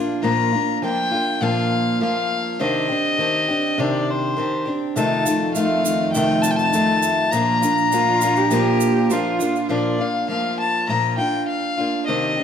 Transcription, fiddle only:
0.23 A#5
0.84 G5
1.43 F5
2.03 F5
2.62 D#5
3.80 D5
4.10 C5
4.98 A5
5.54 F5
6.12 G5
6.42 A5
6.51 G5
6.57 A5
7.31 A#5
9.71 D5
10.01 F5
10.29 F5
10.60 A5
10.89 A#5
11.18 G5
11.48 F5
12.07 D#5

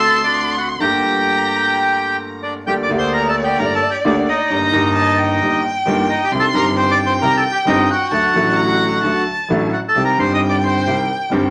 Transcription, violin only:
Already playing: C6
0.81 A#5
2.68 D5
4.51 A#5
4.95 A5
5.18 G5
6.31 C6
6.77 G5
8.11 A5
8.56 A#5
9.03 A5
9.96 G5

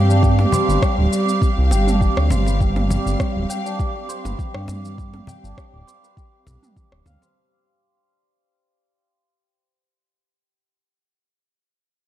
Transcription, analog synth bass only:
Already playing: G2
0.68 G1
0.98 D1
1.58 C2
1.71 G1
2.17 D2
2.31 G1
3.06 G1
3.36 D1
4.25 G1
4.54 G2
5.44 G1
5.73 D1
6.46 B1
6.92 D1
7.06 D2

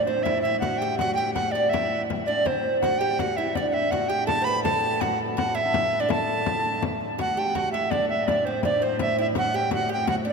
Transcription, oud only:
0.07 C4
0.25 E4
0.45 E4
0.63 F#4
0.82 G4
1.01 F#4
1.18 G4
1.36 F#4
1.55 D4
1.73 E4
2.28 D4
2.45 C4
2.84 F#4
3.01 G4
3.20 F#4
3.38 E4
3.57 D4
3.93 F#4
4.10 G4
4.27 A4
4.42 C5
4.47 B4
4.65 A4
5.01 F#4
5.37 F#4
5.55 E4
6.00 D4
6.09 A4
7.19 F#4
7.37 G4
7.55 F#4
7.74 E4
7.93 D4
8.29 D4
8.47 C4
8.65 D4
8.82 C4
9.00 E4
9.18 E4
9.36 F#4
9.54 G4
9.71 F#4
9.89 G4
10.07 F#4
10.25 D4

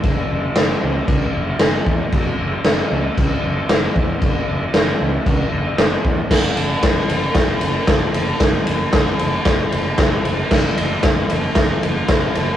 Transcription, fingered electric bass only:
0.04 F#1
0.31 F#1
0.57 F#1
0.83 C#2
1.08 C#2
1.35 F#1
1.61 F#1
1.86 E2
2.13 F#1
2.39 F#1
2.64 F#1
2.91 C#2
3.18 C#2
3.43 F#1
3.70 F#1
3.96 E2
4.22 F#1
4.49 F#1
4.76 F#1
5.01 C#2
5.27 C#2
5.52 F#1
5.79 F#1
6.05 E2
6.31 F#1
6.57 F#1
6.83 F#1
7.09 F#1
7.35 F#1
7.61 F#1
7.87 F#1
8.14 F#1
8.40 F#1
8.68 F#1
8.93 F#1
9.20 F#1
9.46 F#1
9.73 F#1
9.98 F#1
10.25 F#1
10.51 F#1
10.79 F#1
11.04 F#1
11.31 F#1
11.56 F#1
11.84 F#1
12.09 F#1
12.37 F#1

